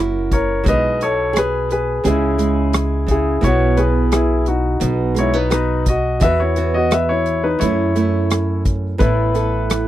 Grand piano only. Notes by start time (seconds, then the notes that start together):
Already playing: F#4 A#4
0.33 A#4 C#5
0.68 B4 D#5
1.03 A4 C#5
1.38 G#4 B4
1.72 G#4 B4
2.06 E4 G#4
3.11 E4 G#4
3.44 F#4 C#5
3.77 G#4 B4
4.12 E4 G#4
4.48 D#4 F#4
5.19 E4 C#5
5.35 D#4 B4
5.51 D#4 B4
5.88 F#4 D#5
6.23 B4 E5
6.40 E4 C#5
6.74 F#4 D#5
6.92 B4 E5
7.09 E4 C#5
7.44 D#4 B4
7.60 E4 C#5
8.99 E4 B4